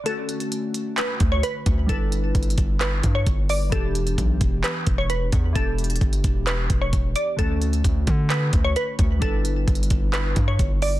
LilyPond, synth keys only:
\new Staff \with { instrumentName = "Synth keys" } { \time 4/4 \key d \major \tempo 4 = 131 <d a cis' fis'>1 | <g d' e' b'>1 | <e b d' g'>1 | <e b d' g'>1 |
<d a cis' fis'>1 | <g d' e' b'>1 | }